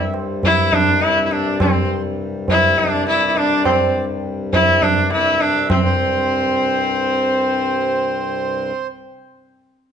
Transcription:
Already playing: harmonium C2 G2
0.00 harmonium E5
0.14 tabla na
0.43 sarangi E4, tabla tin, tabla ge
0.58 harmonium E5
0.73 sarangi D4, tabla tin, tabla ge
0.86 harmonium D5
1.02 sarangi E4, tabla te
1.16 harmonium E5
1.26 sarangi E4
1.31 sarangi D4, tabla te
1.46 harmonium D5
1.60 sarangi C4, tabla na, tabla ge
1.74 harmonium C5
2.48 sarangi E4, tabla tin, tabla ge
2.63 harmonium E5
2.77 sarangi D4, tabla tin, tabla ge
2.86 harmonium E5
2.92 harmonium D5
3.07 sarangi E4, tabla te
3.30 sarangi E4
3.36 sarangi D4, tabla te
3.51 harmonium D5
3.65 sarangi C4, tabla na, tabla ge
4.53 sarangi E4, tabla tin, tabla ge
4.67 harmonium E5
4.82 sarangi D4, tabla tin, tabla ge
4.96 harmonium D5
5.11 sarangi E4, tabla te
5.25 harmonium E5
5.40 sarangi D4, tabla te
5.70 harmonium C2 G2, sarangi C4, tabla na, tabla ge
5.85 harmonium C5

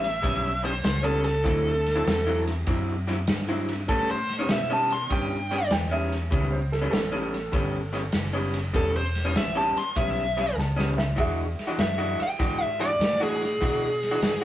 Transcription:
Already playing: fingered electric bass A1, lead electric guitar E5
0.04 snare, ride
0.22 fingered electric bass B1, clean electric guitar A2 G3 B3 C#4, kick, snare, ride
0.63 clean electric guitar A2 G3 B3 C#4, lead electric guitar C5, snare, ride
0.73 muted clean electric guitar stroke
0.83 fingered electric bass C#2, lead electric guitar C5, muted clean electric guitar stroke, snare, ride
1.03 clean electric guitar A2 G3 B3 C#4, lead electric guitar A4
1.25 lead electric guitar A4, snare, ride
1.34 muted clean electric guitar stroke
1.44 fingered electric bass D2, clean electric guitar D3 F#3 C4 E4, kick, ride
1.86 snare, ride
1.96 clean electric guitar D3 F#3 C4 E4
2.06 fingered electric bass E2, snare, ride
2.26 clean electric guitar D3 F#3 C4 E4
2.48 snare, ride
2.67 fingered electric bass F#2, clean electric guitar D3 F#3 C4 E4, kick, ride
3.07 clean electric guitar D3 F#3 C4 E4, snare, ride
3.18 muted clean electric guitar stroke
3.27 fingered electric bass G2, muted clean electric guitar stroke, snare, ride
3.49 clean electric guitar D3 F#3 C4 E4
3.69 snare, ride
3.79 muted clean electric guitar stroke
3.89 clean electric guitar A2 G3 B3 C#4, fingered electric bass A2, lead electric guitar A4, kick, snare, ride
4.11 lead electric guitar C5
4.29 snare, ride
4.39 clean electric guitar A2 G3 B3 C#4
4.49 fingered electric bass B2, lead electric guitar E5, snare, ride
4.70 clean electric guitar A2 G3 B3 C#4, lead electric guitar A5
4.90 lead electric guitar C6, snare, ride
5.09 fingered electric bass G2, clean electric guitar A2 G3 B3 C#4, lead electric guitar G5, kick, snare, ride
5.51 clean electric guitar A2 G3 B3 C#4, snare, ride
5.61 muted clean electric guitar stroke
5.70 fingered electric bass E2, upright piano G5, muted clean electric guitar stroke, snare, ride
5.87 upright piano D#5
5.91 clean electric guitar A2 G3 B3 C#4, upright piano E5
6.12 snare, ride
6.21 muted clean electric guitar stroke
6.31 fingered electric bass C#2, clean electric guitar A2 G3 B3 C#4, kick, ride
6.52 upright piano C5
6.72 upright piano A4, snare, ride
6.82 clean electric guitar A2 G3 B3 C#4
6.91 upright piano A4, snare, ride
7.12 clean electric guitar A2 G3 B3 C#4
7.34 snare, ride
7.52 fingered electric bass G1, clean electric guitar A2 G3 B3 C#4, kick, ride
7.93 clean electric guitar A2 G3 B3 C#4, snare, ride
8.03 muted clean electric guitar stroke
8.12 fingered electric bass F#1, muted clean electric guitar stroke, snare, ride
8.33 clean electric guitar A2 G3 B3 C#4
8.54 snare, ride
8.64 muted clean electric guitar stroke
8.73 fingered electric bass E1, clean electric guitar A2 G3 B3 C#4, lead electric guitar A4, kick, snare, ride
8.97 lead electric guitar C5
9.15 snare, ride
9.25 clean electric guitar A2 G3 B3 C#4
9.35 fingered electric bass A1, lead electric guitar E5, snare, ride
9.55 clean electric guitar A2 G3 B3 C#4, lead electric guitar A5
9.76 lead electric guitar C6, muted fingered electric bass stroke, snare, ride
9.96 fingered electric bass B1, clean electric guitar A2 G3 B3 C#4, lead electric guitar E5, kick, snare, ride
10.37 clean electric guitar A2 G3 B3 C#4, snare, ride
10.47 muted clean electric guitar stroke
10.54 fingered electric bass C#2, upright piano G#5, muted clean electric guitar stroke
10.58 upright piano A5, snare
10.76 clean electric guitar A2 G3 B3 C#4, snare
10.97 upright piano E5, snare
11.07 muted clean electric guitar stroke
11.16 clean electric guitar E3 G#3 D4 F#4, upright piano G#4 E5, kick, ride
11.58 muted fingered electric bass stroke, snare, ride
11.67 clean electric guitar E3 G#3 D4 F#4
11.78 fingered electric bass F#2, lead electric guitar E5, snare, ride
11.98 clean electric guitar E3 G#3 D4 F#4
12.19 lead electric guitar G5, muted fingered electric bass stroke, snare, ride
12.39 fingered electric bass G#2, clean electric guitar E3 G#3 D4 F#4, kick, snare, ride
12.62 lead electric guitar E5
12.79 clean electric guitar E3 G#3 D4 F#4, lead electric guitar D5, snare, ride
12.90 muted clean electric guitar stroke
12.99 fingered electric bass A2, muted clean electric guitar stroke, snare, ride
13.20 clean electric guitar E3 G#3 D4 F#4, lead electric guitar G#4
13.42 snare, ride
13.51 muted clean electric guitar stroke
13.61 fingered electric bass B2, clean electric guitar E3 G#3 D4 F#4, kick, ride
14.03 snare, ride
14.11 clean electric guitar E3 G#3 D4 F#4
14.22 fingered electric bass G#2, snare, ride

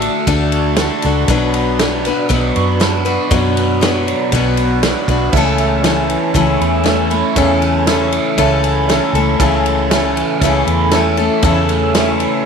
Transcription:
Already playing: steel-string acoustic guitar A3 D4 F#4 A4, overdriven electric guitar A3 F#4, tonewheel organ D4 F#4 A4 D5
0.02 overdriven electric guitar D3, ride
0.27 fingered electric bass D2, steel-string acoustic guitar D3 A3 D4 F#4 A4, kick, ride
0.52 overdriven electric guitar F#4, ride
0.76 steel-string acoustic guitar A3 D4 F#4, snare, ride
0.81 steel-string acoustic guitar A4
1.02 fingered electric bass C#2, steel-string acoustic guitar D4 F#4 A4, ride
1.27 fingered electric bass B1, steel-string acoustic guitar B2 F#3 D4 F#4 B4, tonewheel organ D4 F#4 B4 D5, kick, ride
1.54 overdriven electric guitar B3, ride
1.79 steel-string acoustic guitar F#3 D4 F#4 B4, snare, ride
2.05 overdriven electric guitar F#3, steel-string acoustic guitar D4 F#4 B4, ride
2.29 fingered electric bass B1, steel-string acoustic guitar B2 F#3 D4 F#4 B4, overdriven electric guitar B3, kick, ride
2.56 fingered electric bass F#2, overdriven electric guitar F#4, ride
2.80 steel-string acoustic guitar F#3 D4 F#4 B4, snare, ride
3.05 steel-string acoustic guitar D4 F#4 B4, ride
3.31 fingered electric bass F#2, steel-string acoustic guitar B2 F#3 D4 F#4 B4, kick, ride
3.57 overdriven electric guitar B3, ride
3.81 steel-string acoustic guitar F#3 D4 F#4 B4, snare, ride
4.07 overdriven electric guitar F#3, ride
4.32 fingered electric bass B1, steel-string acoustic guitar B2 F#3 D4 F#4 B4, overdriven electric guitar B3, kick, ride
4.57 overdriven electric guitar F#4, ride
4.83 steel-string acoustic guitar F#3 D4 F#4 B4, snare, ride
5.08 fingered electric bass B1, steel-string acoustic guitar D4 F#4 B4, kick, ride
5.32 fingered electric bass C#2, steel-string acoustic guitar C#3, tonewheel organ C#4 E4 A4 C#5, upright piano A4 C#5 E5, kick, crash
5.37 steel-string acoustic guitar E3 A3 C#4 A4
5.58 overdriven electric guitar A3, ride
5.82 steel-string acoustic guitar E3 A3 C#4, upright piano A4 C#5 E5, snare, ride
5.86 steel-string acoustic guitar A4
6.10 overdriven electric guitar E3, ride
6.33 fingered electric bass C#2, steel-string acoustic guitar C#3 E3 A3 C#4 A4, upright piano A4 C#5 E5, kick, ride
6.60 fingered electric bass E2, overdriven electric guitar E4, ride
6.84 steel-string acoustic guitar E3 A3 C#4 A4, upright piano A4 C#5 E5, snare, ride
7.10 steel-string acoustic guitar A3 C#4 A4, overdriven electric guitar E4, ride
7.36 fingered electric bass E2, steel-string acoustic guitar C#3 E3 A3 C#4 A4, upright piano A4 C#5 E5, kick, ride
7.62 overdriven electric guitar A3, ride
7.87 steel-string acoustic guitar E3 A3, upright piano A4 C#5 E5, snare, ride
7.91 steel-string acoustic guitar C#4 A4
8.12 overdriven electric guitar E3, ride
8.37 fingered electric bass C#2, steel-string acoustic guitar C#3 E3 A3 C#4 A4, upright piano A4 C#5 E5, kick, ride
8.64 overdriven electric guitar E4, ride
8.88 steel-string acoustic guitar E3 A3 C#4 A4, upright piano A4 C#5 E5, snare, ride
9.13 fingered electric bass C#2, steel-string acoustic guitar A3 C#4 A4, overdriven electric guitar E4, ride
9.39 fingered electric bass C#2, steel-string acoustic guitar C#3 E3 A3 C#4 A4, tonewheel organ C#4 E4 A4, upright piano A4 C#5 E5, kick, ride
9.66 overdriven electric guitar A3, ride
9.90 steel-string acoustic guitar E3 A3, upright piano A4 C#5 E5, snare, ride
9.94 steel-string acoustic guitar C#4 A4
10.16 overdriven electric guitar E3, ride
10.41 fingered electric bass C#2, steel-string acoustic guitar C#3 E3 A3, upright piano A4 C#5 E5, kick, ride
10.45 steel-string acoustic guitar C#4 A4
10.67 fingered electric bass E2, overdriven electric guitar E4, ride
10.91 steel-string acoustic guitar E3 A3 C#4, upright piano A4 C#5 E5, snare, ride
10.95 steel-string acoustic guitar A4
11.17 steel-string acoustic guitar A3 C#4 A4, overdriven electric guitar E4, ride
11.42 fingered electric bass E2, steel-string acoustic guitar C#3 E3 A3 C#4 A4, upright piano A4 C#5 E5, kick, ride
11.69 overdriven electric guitar A3, ride
11.94 steel-string acoustic guitar E3 A3 C#4 A4, upright piano A4 C#5 E5, snare, ride
12.19 overdriven electric guitar E3, ride

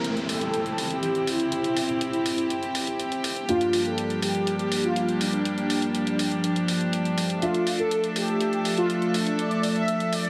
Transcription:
Already playing: grand piano E3 G3 C4 E4, string section C4 E4 G4, analog polysynth A#4, downlifter
0.04 closed hi-hat
0.17 closed hi-hat
0.29 analog polysynth A4, open hi-hat
0.41 closed hi-hat
0.54 closed hi-hat
0.66 closed hi-hat
0.78 open hi-hat
0.90 analog polysynth G4, closed hi-hat
1.03 closed hi-hat
1.15 closed hi-hat
1.27 analog polysynth E4, open hi-hat
1.40 closed hi-hat
1.52 closed hi-hat
1.64 closed hi-hat
1.77 open hi-hat
1.89 closed hi-hat
2.01 closed hi-hat
2.13 closed hi-hat
2.26 open hi-hat
2.38 closed hi-hat
2.50 closed hi-hat
2.63 closed hi-hat
2.75 open hi-hat
2.87 closed hi-hat
3.00 closed hi-hat
3.12 closed hi-hat
3.24 open hi-hat
3.36 closed hi-hat
3.49 grand piano G2 G3 A#3 D4 F4, string section F3 G3 A#3 D4, analog polysynth F4, closed hi-hat
3.61 closed hi-hat
3.73 open hi-hat
3.85 analog polysynth A4, closed hi-hat
3.98 closed hi-hat
4.10 closed hi-hat
4.22 analog polysynth G4, open hi-hat
4.35 closed hi-hat
4.47 closed hi-hat
4.59 closed hi-hat
4.72 open hi-hat
4.84 analog polysynth F4, closed hi-hat
4.96 closed hi-hat
5.09 closed hi-hat
5.21 analog polysynth D4, open hi-hat
5.33 closed hi-hat
5.45 closed hi-hat
5.58 closed hi-hat
5.70 open hi-hat
5.82 closed hi-hat
5.95 closed hi-hat
6.07 closed hi-hat
6.19 open hi-hat
6.32 closed hi-hat
6.44 closed hi-hat
6.56 closed hi-hat
6.68 open hi-hat
6.81 closed hi-hat
6.93 closed hi-hat
7.05 closed hi-hat
7.18 open hi-hat
7.30 closed hi-hat
7.42 grand piano F3 A3 D4 E5, string section A3 A4 E5, analog polysynth F4, closed hi-hat
7.54 closed hi-hat
7.67 open hi-hat
7.79 analog polysynth A4, closed hi-hat
7.91 closed hi-hat
8.04 closed hi-hat
8.16 analog polysynth G4, open hi-hat
8.28 closed hi-hat
8.41 closed hi-hat
8.53 closed hi-hat
8.65 open hi-hat
8.77 analog polysynth F4, closed hi-hat
8.90 closed hi-hat
9.02 closed hi-hat
9.14 analog polysynth D4, open hi-hat
9.27 closed hi-hat
9.39 analog polysynth D5, closed hi-hat
9.51 closed hi-hat
9.63 open hi-hat
9.76 analog polysynth E5, closed hi-hat
9.88 closed hi-hat
10.00 closed hi-hat
10.13 analog polysynth D5, open hi-hat
10.25 closed hi-hat

